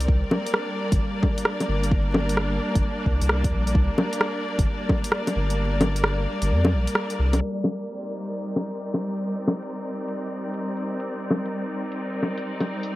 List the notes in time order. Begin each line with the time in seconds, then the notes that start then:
Already playing: G3 C4 A#4 D5
0.00 closed hi-hat
0.08 C2, kick
0.26 A#3
0.31 low bongo
0.47 closed hi-hat
0.54 D4, cross-stick
0.92 G1, kick, closed hi-hat
1.23 kick, low bongo
1.38 closed hi-hat
1.45 cross-stick
1.60 closed hi-hat, low bongo
1.69 G1
1.83 closed hi-hat
1.91 kick
2.14 low bongo
2.29 closed hi-hat
2.37 cross-stick
2.75 G1, kick, closed hi-hat
3.06 C2, kick
3.21 C2, closed hi-hat
3.29 cross-stick
3.44 kick, closed hi-hat
3.53 A#1
3.67 closed hi-hat
3.75 C2, kick
3.98 low bongo
4.13 closed hi-hat
4.21 cross-stick
4.58 G1, kick, closed hi-hat
4.89 kick, low bongo
5.04 closed hi-hat
5.12 cross-stick
5.27 closed hi-hat, low bongo
5.36 G1
5.50 closed hi-hat
5.81 closed hi-hat, low bongo
5.96 closed hi-hat
6.04 cross-stick
6.42 G1, closed hi-hat
6.50 F2
6.65 low bongo
6.73 A#1
6.87 closed hi-hat
6.95 cross-stick
7.10 closed hi-hat
7.19 C2
7.33 closed hi-hat, low bongo
7.64 low bongo
7.79 closed hi-hat
7.88 C4
7.98 D#4
8.25 closed hi-hat
8.56 low bongo
8.71 closed hi-hat
8.94 closed hi-hat, low bongo
9.17 closed hi-hat
9.48 low bongo
9.62 closed hi-hat
10.08 closed hi-hat
10.54 closed hi-hat
10.77 closed hi-hat
11.00 closed hi-hat
11.31 low bongo
11.46 closed hi-hat
11.92 closed hi-hat
12.23 low bongo
12.38 closed hi-hat
12.60 closed hi-hat, low bongo
12.83 closed hi-hat